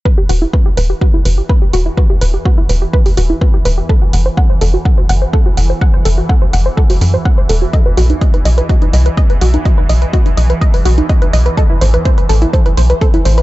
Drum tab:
HH |--o---o---o---o-|--o---o--oo---o-|--o---o---o---o-|--o---o--oo---o-|
BD |o---o---o---o---|o---o---o---o---|o---o---o---o---|o---o---o---o---|

HH |x-oxxxoxxxoxxxox|x-oxxxoxxooxxxox|x-oxxxoxxxoxxxox|
BD |o---o---o---o---|o---o---o---o---|o---o---o---o---|